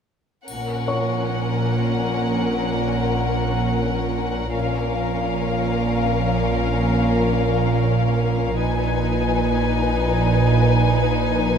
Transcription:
0.48 A#1 A#2 C#4 A#4 F#5, triangle
0.88 C#5 C#6
4.53 A#1 A#2 C#4 A#4 F5
8.59 A#1 A#2 D#4 B4 G#5

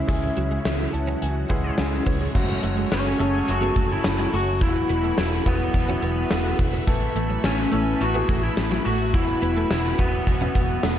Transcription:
Already playing: C#3 G#3 C#4 D#4 E4 B4 E5
0.07 C#2 G#3 C#4 E4 F#4 G#4, kick, closed hi-hat
0.23 muted clean electric guitar stroke
0.37 C#2 F#3, closed hi-hat
0.51 G#3
0.65 C#2 B3, snare, closed hi-hat
0.93 C#2 A5, muted clean electric guitar stroke, closed hi-hat
1.08 C#4
1.22 C#2 G#5, closed hi-hat
1.49 C#2 G#3 B3 C#4 E4 G#4 F#5, kick, closed hi-hat
1.78 C#2 G#5, muted clean electric guitar stroke, snare, closed hi-hat
2.06 C#2 B3 C#5, kick, open hi-hat
2.21 G#3
2.34 F#1 F#2 C#3 F#3 G#3 A3 C#4 F#4 C#5 G#5, kick, crash
2.49 muted clean electric guitar stroke
2.63 F#1 C#3 F#3 A3, closed hi-hat
2.77 G#3
2.92 F#1 C#4, snare, closed hi-hat, tambourine
3.19 F#1 F#3 A3 C#4 G#4 A4, closed hi-hat
3.45 F#1 F#2, muted clean electric guitar stroke, closed hi-hat
3.50 C#3 F#3 F#4
3.61 F#3 A3 B3 C#4 G#4 A4
3.76 F#1 A3, kick, closed hi-hat
3.93 E4
4.04 F#1, muted clean electric guitar stroke, snare, closed hi-hat, tambourine
4.19 G#3
4.33 F#1 A3 F#4, open hi-hat
4.60 E1 E2 B2 E3 F#3 B3 E4 F4 B4 E5 B5, kick, closed hi-hat
4.68 F#4
4.76 muted clean electric guitar stroke
4.88 E1 B2 E3 B3, closed hi-hat
5.04 A3
5.18 E1 E4, snare, closed hi-hat, tambourine
5.46 E1 E3 F#3 B3 E4 F#4, kick, closed hi-hat
5.72 E1 E2, muted clean electric guitar stroke, kick, closed hi-hat
5.76 B2 E3
5.88 E3 F#3 B3 C#4 E4 F#4
6.02 E1 B3, closed hi-hat
6.31 E1 A3, snare, closed hi-hat, tambourine
6.59 E1, muted clean electric guitar stroke, kick, open hi-hat
6.73 B3
6.86 A1 A2 E3 A3 B3 E4 A4 B4, kick, closed hi-hat
7.02 muted clean electric guitar stroke
7.15 A1 E3 A3, closed hi-hat
7.30 F#3
7.44 A1 C#4, snare, closed hi-hat, tambourine
7.72 A1 E3 A3 B3 E4 A4, closed hi-hat
7.99 A1 A2 E3 F#4, muted clean electric guitar stroke, closed hi-hat
8.06 A3
8.14 E3 A3 B3 E4 G#4
8.29 A1 A3, kick, closed hi-hat
8.44 E4
8.57 A1, muted clean electric guitar stroke, snare, closed hi-hat, tambourine
8.71 F#3
8.85 A1 A3 F#4, open hi-hat
9.13 E1 E2 B2 E3 F#3 B3 E4 F#4, kick, closed hi-hat
9.28 muted clean electric guitar stroke
9.41 E1 B2 E3 B3, closed hi-hat
9.57 A3
9.71 E1 E4, snare, closed hi-hat, tambourine
9.98 E1 E3 F#3 B3 E4 F#4, kick, closed hi-hat
10.25 E1 E2, muted clean electric guitar stroke, kick, closed hi-hat
10.29 B2 E3
10.41 E3 F#3 B3 C#4 E4 F#4
10.55 E1 B3, kick, closed hi-hat
10.83 E1 A3, snare, closed hi-hat, tambourine

